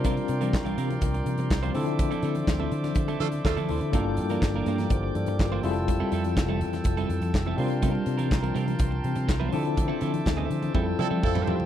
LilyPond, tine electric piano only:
\new Staff \with { instrumentName = "Tine electric piano" } { \time 4/4 \key f \major \tempo 4 = 123 << { r1 | r2. <a' d''>8 <e' a'>8~ | <e' a'>8 r4. <g' c''>8 <a' d''>8 <f' bes'>4 | r1 |
r1 | r2 r8 <d'' g''>8 <c'' f''>8 <g' c''>8 | } \\ { <g c' d' f' bes'>2.~ <g c' d' f' bes'>8 <f c' d' e' a'>8~ | <f c' d' e' a'>2. r4 | <g bes d' f' a'>2.~ <g bes d' f' a'>8 <g c' e' f' aes' a'>8~ | <g c' e' f' aes' a'>2.~ <g c' e' f' aes' a'>8 <g c' d' f' bes'>8~ |
<g c' d' f' bes'>2.~ <g c' d' f' bes'>8 <f c' d' e' a'>8~ | <f c' d' e' a'>2 <g c' e' f' aes' a'>2 | } >> }